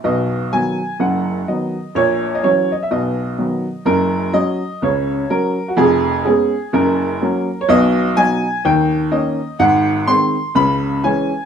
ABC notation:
X:1
M:4/4
L:1/16
Q:"Swing" 1/4=126
K:B
V:1 name="Upright piano"
d4 g4 f4 d4 | c3 d c2 d e d8 | A4 d4 c4 A3 F | G4 G4 A6- A c |
d4 g4 =g4 d4 | f4 ^b4 =b4 g4 |]
V:2 name="Upright piano" clef=bass
[B,,,B,,]4 [D,F,B,]4 [F,,,F,,]4 [D,F,B,]4 | [A,,,A,,]4 [E,F,C]4 [B,,,B,,]4 [D,F,B,]4 | [F,,,F,,]4 [F,C]4 [C,,C,]4 [F,C]4 | [^E,,,^E,,]4 [G,B,C]4 [F,,,F,,]4 [F,A,C]4 |
[B,,,B,,]4 [F,B,D]4 [D,,D,]4 [D,A,C]4 | [G,,,G,,]4 [D,G,^B,]4 [C,,C,]4 [E,G,C]4 |]